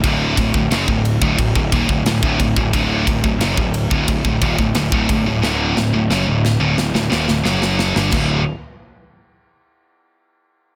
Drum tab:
CC |----------------|----------------|----------------|x---------------|
RD |x-x-x-x-x-x-x-x-|x-x-x-x-x-x-x-x-|----------------|----------------|
SD |----o-------o---|----o-------o---|o-o-o-o-oooooooo|o---------------|
BD |o-oo-o-ooooo-ooo|o-oo-o-ooooo-oo-|----------------|o---------------|